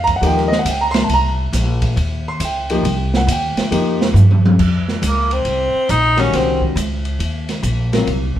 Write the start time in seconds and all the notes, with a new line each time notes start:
Already playing: F2
0.04 A#5, kick, ride
0.16 F#5
0.21 D#2 F3 A#3 D#4 G4, ride
0.27 G5
0.37 A#4, snare
0.48 D#5
0.52 snare
0.59 F#5
0.65 C#2, hi-hat pedal, ride
0.70 G5
0.81 A#5
0.91 C6, snare, ride
1.04 A5
1.08 C2, ride
1.13 A#5
1.53 A#1, snare, hi-hat pedal, ride
1.82 kick, ride
1.96 D#2, ride
2.28 C6
2.40 C#2, hi-hat pedal, ride
2.45 G5
2.70 F3 A#3 D#4 G4 G5, ride
2.83 C2, ride
3.14 F#5, snare
3.27 D#2, hi-hat pedal, ride
3.32 G5
3.56 muted upright bass stroke, snare, ride
3.71 F2 F3 A#3 D#4 G4, ride
4.01 snare
4.14 G2, hi-hat pedal, mid tom
4.31 mid tom
4.46 mid tom
4.59 F2, kick, crash
4.89 snare
5.02 C#2, hi-hat pedal, ride
5.07 A#3
5.31 C4, ride
5.45 C2, ride
5.73 muted upright bass stroke
5.89 A#1 D#4, hi-hat pedal, ride
6.17 D#3 G3 C#4 F#4, snare, ride
6.32 C2 C4, snare, ride
6.62 kick
6.76 C#2, hi-hat pedal, ride
7.05 ride
7.19 D#2, ride
7.49 snare, ride
7.63 A#1, hi-hat pedal, ride
7.93 F#3 C4 F4 A#4, snare, ride
8.07 C2, ride
8.36 muted upright bass stroke, kick